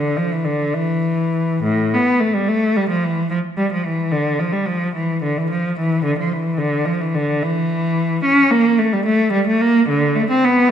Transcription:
0.00 0.17 D3 medium
0.17 0.31 F3 soft
0.32 0.46 E3 soft
0.44 0.73 D3 soft
0.74 1.64 E3 medium
1.63 1.93 A2 medium
1.94 2.21 B3 medium
2.20 2.34 A3 medium
2.35 2.48 G3 soft
2.48 2.76 A3 medium
2.76 2.90 G3 medium
2.90 3.03 F3 soft
3.04 3.31 E3 soft
3.31 3.39 F3 medium
3.57 3.71 G3 medium
3.72 3.85 F3 soft
3.85 4.12 E3 soft
4.12 4.39 D3 medium
4.39 4.53 F3 soft
4.53 4.66 G3 soft
4.66 4.94 F3 medium
4.96 5.23 E3 medium
5.23 5.36 D3 medium
5.38 5.50 E3 medium
5.51 5.76 F3 medium
5.80 6.04 E3 medium
6.05 6.17 D3 medium
6.19 6.31 F3 medium
6.33 6.59 E3 soft
6.58 6.85 D3 medium
6.85 6.99 F3 medium
7.01 7.13 E3 soft
7.15 7.41 D3 medium
7.42 8.24 E3 medium
8.24 8.50 C#4 medium
8.51 8.77 A#3 medium
8.78 8.91 A3 medium
8.93 9.05 G3 medium
9.06 9.32 A3 medium
9.32 9.45 G3 medium
9.47 9.59 A3 medium
9.61 9.87 A#3 medium
9.89 10.14 D3 medium
10.16 10.28 A3 medium
10.30 10.42 C4 medium
10.45 10.70 B3 medium

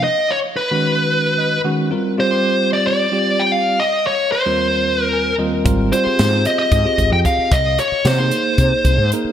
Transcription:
0.04 0.32 D#5 medium
0.31 0.38 C#5 medium
0.57 1.60 B4 medium
0.71 1.58 D#3 medium
0.71 1.58 G#3 medium
0.71 1.58 C#4 medium
0.71 1.58 F#4 medium
1.38 1.63 D#5 medium
1.65 1.89 D#3 medium
1.65 1.90 G#3 medium
1.65 1.89 C#4 medium
1.65 1.90 F#4 medium
1.65 1.90 F#5 medium
1.91 2.16 G3 medium
1.91 2.16 C4 medium
1.91 2.16 F4 medium
1.91 2.16 A#4 medium
2.18 2.29 G3 medium
2.18 2.30 C4 medium
2.18 2.30 F4 medium
2.18 2.31 G4 medium
2.18 2.69 C5 medium
2.31 3.05 G3 medium
2.31 3.05 C4 medium
2.31 3.05 F4 medium
2.31 3.06 G4 medium
2.73 2.85 D5 medium
2.87 3.41 D5 medium
3.12 3.78 G3 medium
3.12 3.79 C4 medium
3.12 3.79 F4 medium
3.12 3.79 G4 medium
3.40 3.52 G5 medium
3.52 3.79 F5 medium
3.80 4.06 D#5 medium
4.07 4.32 C#5 medium
4.32 5.03 C5 medium
4.46 5.32 D#2 medium
4.46 5.32 G3 medium
4.46 5.32 C4 medium
4.46 5.32 F4 medium
4.46 5.32 A#4 medium
5.03 5.35 A#4 medium
5.13 5.37 G#5 medium
5.38 5.63 D#2 medium
5.38 5.63 G3 medium
5.38 5.64 C4 medium
5.38 5.63 F4 medium
5.38 5.63 A#4 medium
5.38 5.64 D#5 medium
5.64 5.90 G#1 medium
5.64 5.89 G3 medium
5.64 5.90 C4 medium
5.64 5.90 F4 medium
5.64 5.90 A#4 medium
5.64 kick loud
5.64 closed hi-hat medium
5.91 6.04 G3 medium
5.91 6.04 C4 medium
5.91 6.04 F4 medium
5.91 6.04 C5 medium
5.91 6.47 C5 medium
5.91 closed hi-hat medium
6.04 6.79 C4 medium
6.04 6.79 F4 soft
6.04 6.79 G4 medium
6.04 6.79 G#4 medium
6.04 muted fretless electric bass stroke soft
6.19 6.44 G#2 medium
6.19 snare loud
6.19 closed hi-hat medium
6.45 6.58 D#5 medium
6.45 closed hi-hat medium
6.59 7.08 D#5 medium
6.72 6.84 G#2 medium
6.72 kick medium
6.72 closed hi-hat medium
6.85 7.52 C4 medium
6.85 7.52 F4 medium
6.85 7.52 G4 medium
6.85 7.52 G#4 medium
6.98 7.11 G#1 medium
6.98 kick medium
6.98 closed hi-hat medium
7.11 7.24 F2 medium
7.11 7.18 G5 medium
7.25 7.53 F5 medium
7.25 kick medium
7.25 closed hi-hat medium
7.38 muted fretless electric bass stroke soft
7.51 7.77 C2 medium
7.51 7.77 D#5 medium
7.51 kick loud
7.51 closed hi-hat medium
7.79 8.07 C#5 medium
7.79 closed hi-hat medium
7.92 muted fretless electric bass stroke soft
8.05 8.30 C3 medium
8.05 9.09 C5 medium
8.05 snare medium
8.05 closed hi-hat medium
8.19 9.05 A#3 medium
8.19 9.05 D#4 medium
8.19 9.05 G#4 medium
8.19 9.05 C5 medium
8.31 closed hi-hat medium
8.58 8.71 C3 medium
8.58 kick medium
8.58 closed hi-hat medium
8.84 8.97 C2 medium
8.84 kick medium
8.84 closed hi-hat medium
8.98 9.11 G#2 medium
9.12 9.32 A#3 medium
9.12 9.32 D#4 medium
9.12 9.32 G#4 medium
9.12 9.32 A#4 medium
9.12 closed hi-hat medium
9.24 muted fretless electric bass stroke soft

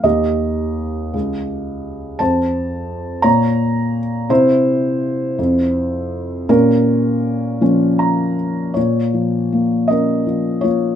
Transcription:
0.04 1.11 D#2 medium
0.04 2.17 G4 soft
0.04 2.26 D#5 medium
1.14 2.17 C#2 medium
2.19 3.21 F2 medium
2.19 3.20 C5 medium
2.19 3.27 A5 medium
3.22 4.27 A#2 medium
3.22 4.26 C#5 medium
3.22 3.98 A#5 medium
4.29 5.35 C3 medium
4.29 6.45 E4 medium
4.29 6.55 C5 medium
5.39 6.45 F2 medium
6.49 8.73 A#2 medium
6.49 7.60 C#4 medium
6.49 8.34 A#4 medium
7.61 8.73 F3 medium
7.61 8.73 A#3 soft
7.61 8.73 C#4 medium
7.99 8.72 A#5 medium
8.74 10.95 A#2 soft
8.74 9.86 F4 medium
8.74 9.93 C#5 medium
9.14 10.25 F3 soft
9.52 10.63 A#3 soft
9.88 10.95 C#4 soft
9.88 10.60 A#4 medium
9.88 10.65 D#5 medium
10.27 10.95 F3 soft
10.61 10.95 A#3 soft
10.61 10.95 F4 medium
10.61 10.95 C#5 medium

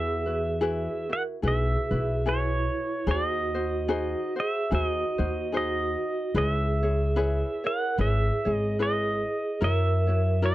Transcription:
0.00 0.86 E2 medium
0.00 0.27 E4 medium
0.00 0.26 F#4 medium
0.00 0.25 G#4 medium
0.00 1.06 G#4 medium
0.00 0.25 B4 medium
0.00 1.13 E5 medium
0.26 0.60 E4 soft
0.26 0.60 F#4 soft
0.26 0.60 B4 soft
0.61 1.09 E4 medium
0.61 1.08 F#4 medium
0.61 1.09 G#4 medium
0.61 1.10 B4 medium
1.09 1.42 E4 soft
1.09 1.43 F#4 soft
1.09 1.25 A#4 medium
1.09 1.22 F#5 medium
1.42 1.74 B1 loud
1.42 1.91 E4 medium
1.42 1.91 F#4 medium
1.42 1.90 G#4 medium
1.42 2.22 G#4 medium
1.42 1.89 B4 medium
1.48 2.30 E5 medium
1.91 2.67 B1 medium
1.91 2.25 E4 soft
1.91 2.26 F#4 soft
1.91 2.25 B4 medium
2.26 3.04 E4 medium
2.26 3.07 E4 medium
2.26 3.06 F#4 medium
2.26 3.06 G#4 medium
2.26 3.08 B4 medium
2.26 3.11 C#5 medium
3.07 4.14 D#2 medium
3.07 3.55 D#4 medium
3.07 3.54 F#4 medium
3.07 3.55 G#4 medium
3.07 3.53 C5 medium
3.11 4.35 D#5 medium
3.54 3.88 D#4 soft
3.54 3.88 F#4 soft
3.54 3.89 C5 soft
3.88 4.37 D#4 medium
3.88 4.35 F#4 medium
3.88 4.36 G#4 medium
3.88 4.35 C5 medium
4.36 4.71 F#4 soft
4.36 4.69 G#4 medium
4.36 4.71 C5 soft
4.40 4.74 E5 medium
4.71 5.02 D#2 medium
4.71 5.18 D#4 medium
4.71 5.49 F#4 medium
4.71 5.18 F#4 medium
4.71 5.18 G#4 medium
4.71 5.17 C5 medium
4.75 4.86 E5 medium
4.86 5.56 D#5 medium
5.18 5.94 D#2 medium
5.18 5.52 D#4 soft
5.18 5.53 F#4 soft
5.18 5.53 C5 medium
5.52 6.35 D#4 medium
5.52 6.31 F#4 medium
5.52 6.35 F#4 medium
5.52 6.35 G#4 medium
5.52 6.35 C5 medium
5.57 6.38 D#5 medium
6.35 7.41 C#2 loud
6.35 6.82 E4 medium
6.35 7.60 G#4 medium
6.35 6.82 G#4 medium
6.35 6.82 B4 medium
6.35 6.81 C#5 medium
6.35 6.49 D#5 medium
6.49 7.66 E5 medium
6.83 7.15 E4 soft
6.83 7.15 G#4 soft
6.83 7.16 C#5 soft
7.16 7.64 E4 medium
7.16 7.64 G#4 medium
7.16 7.64 B4 medium
7.16 7.63 C#5 medium
7.64 7.97 E4 soft
7.64 7.98 G#4 soft
7.64 7.96 A#4 medium
7.64 7.98 C#5 soft
7.64 8.01 F#5 loud
7.98 8.29 G#1 medium
7.98 8.46 E4 medium
7.98 8.76 G#4 medium
7.98 8.45 G#4 medium
7.98 8.45 B4 medium
7.98 8.44 C#5 medium
7.98 8.53 E5 medium
8.45 9.21 G#1 medium
8.45 8.78 E4 soft
8.45 8.79 G#4 soft
8.45 8.79 C#5 medium
8.53 8.77 D#5 medium
8.79 9.61 E4 medium
8.79 9.61 G#4 medium
8.79 9.60 B4 medium
8.79 9.62 C#5 medium
8.79 9.64 D#5 medium
9.61 10.55 F#2 loud
9.61 10.07 E4 medium
9.61 10.08 F#4 medium
9.61 10.07 A#4 medium
9.61 10.40 A#4 medium
9.61 10.06 C#5 medium
9.61 10.45 E5 medium
10.07 10.42 E4 soft
10.07 10.41 F#4 soft
10.07 10.42 C#5 medium
10.42 10.55 E4 medium
10.42 10.55 F#4 medium
10.42 10.55 A#4 medium
10.42 10.55 C#5 medium
10.42 10.55 D#5 medium

